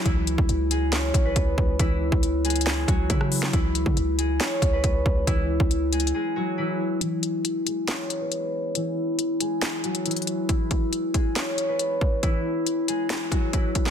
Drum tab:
HH |x-----------x-----------x-----------x-----------x-----------x-----------x-----------------------|x-----------------------x-----------x--x--x--x--x-----------x-----------x-----------o-----------|x-----------x-----------x-----------x-----------x-----------x-----------x-----------------------|x-----------------------x-----------x---x---x---------------------------------------------------|
CP |------------------------------------------------x-----------------------------------------------|------------------------------------------------x-----------------------------------------x-----|------------------------------------------------x-----------------------------------------------|------------------------------------------------------------------------------------------------|
SD |------------------------------------------------o-----------------------------------------------|------------------------------------------------o-----------------------------r-----------o-----|------------------------------------------------o-----------------------------------------------|------------------------------------------------------------------------------------------------|
BD |o-----------------o-----------------------------------------o-----------o-----------o-----------|o-----------------o-----------------------------------------o-----------o-----------------------|o-----------------o-----------------------------------------o-----------o-----------o-----------|o-----------------o-----------------------------------------------------------------------------|

HH |x-----------x-----------x-----------x-----------x-----------x-----------x-----------------------|x-----------------------x-----------x-----------x-----------x-----x-----x--x--x--x--x-----------|x-----------x-----------x-----------x-----------x-----------x-----------x-----------------------|x-----------------------x-----------x-----------x-----------x-----------x-----------x-----------|
CP |------------------------------------------------x-----------------------------------------------|------------------------------------------------x-----------------------------------------------|------------------------------------------------x-----------------------------------------------|------------------------------------------------x-----------------------------------------x-----|
SD |------------------------------------------------o-----------------------------------------------|------------------------------------------------o-----------------------------------------------|------------------------------------------------o-----------------------------------------------|------------------------------------------------o-----------------------------------------o-----|
BD |------------------------------------------------------------------------------------------------|------------------------------------------------------------------------------------------------|o-----------o-----------------------o-----------------------------------------------o-----------|o-----------------------------------------------------------o-----------o-----------o-----------|